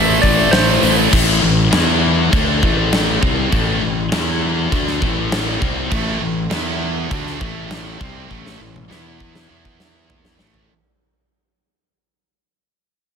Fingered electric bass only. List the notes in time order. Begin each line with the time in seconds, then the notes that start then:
Already playing: A1
0.23 A1
0.53 A1
0.83 A1
1.13 A1
1.43 A1
1.73 E2
2.33 D2
2.63 A1
3.23 C2
3.52 A1
3.82 A1
4.12 E2
4.72 D2
5.02 A1
5.62 C2
5.92 A1
6.21 A1
6.52 E2
7.11 D2
7.41 A1
8.01 C2
8.31 A1
8.60 A1
8.90 E2
9.50 E2
10.41 A1